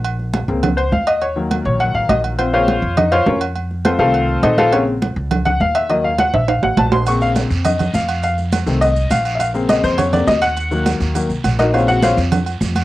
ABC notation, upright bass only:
X:1
M:4/4
L:1/8
Q:1/4=205
K:Bbm
V:1 name="Upright bass" clef=bass
B,,,3 D,,3 E,,2- | E,,3 B,,,2 =A,,, B,,,2- | B,,,3 F,,3 F,,2- | F,,3 C,,3 B,,,2- |
B,,,3 D,,3 E,,2- | E,,3 B,,,2 =A,,, B,,,2- | B,,,3 F,,3 F,,2- | F,,3 C,,3 B,,,2- |
B,,,3 F,,3 E,,2- | E,,3 E,,2 C,, B,,,2- | B,,,3 F,,3 F,,2 |]